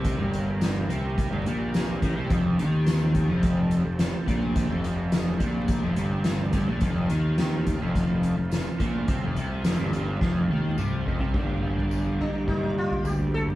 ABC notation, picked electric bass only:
X:1
M:4/4
L:1/16
Q:1/4=106
K:Fmix
V:1 name="Picked electric bass" clef=bass
C,, G,,,4- G,,, C,,3 G,,, B,,,4 A,,, C,, | F,,,2 E,,4- E,, F,,,4 F,,,2 z B,,,2- | B,,, F,,,4- F,,, B,,,3 F,,, G,,,4 G,,, B,,, | F,,,2 E,,4- E,, F,,,4 F,,,2 z B,,,2 |
C,, F,,, C,,2 F,,, G,,, G,,,2 F,,,2 E,,2 C,,2 F,,, C,, | G,,,8 G,,4 D,,4 |]